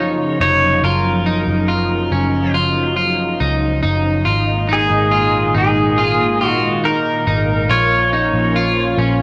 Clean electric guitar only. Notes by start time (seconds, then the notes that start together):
Already playing: D#4
0.41 D#4
0.84 F4
1.26 D#4
1.68 F4
2.12 C#4
2.54 F4
2.96 F4
3.40 D#4
3.83 D#4
4.25 F4
4.69 D#4
5.11 F4
5.54 D#4
5.98 F4
6.41 F4
6.84 D#4
7.27 D#4
7.69 F4
8.13 D#4
8.56 F4
8.98 C#4